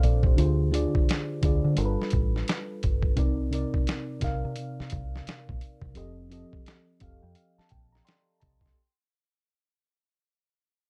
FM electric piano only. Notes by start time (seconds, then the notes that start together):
Already playing: A#2 A#3 C4 D4 A4 C5 D5 F5 G5
0.04 A4 D5
0.25 G4 C5
0.36 D3 D4 F4 G#4 C5
0.71 D3 D4 F4 G#4 D5
1.42 D3 D4 F4 G#4 D5
1.75 G3 D4 F4 A4 A#4
1.85 B4
3.15 C3 C4 D#4 A#4 D5
3.50 C3 C4 D#4 A#4
3.55 D5
4.20 C3 C4 D#4 A#4 F5
5.94 F3 C4 G4 A4
5.98 D#5
6.29 F3 C4 G4 A4
6.33 D#5
7.00 F3 C4 G4 A4 F5
7.04 F5
7.22 G5
7.36 F5
7.58 A5
7.71 G5
7.92 A#5
8.05 D5 G5 C6
8.40 D#5 A5 A#5
8.62 G5 C6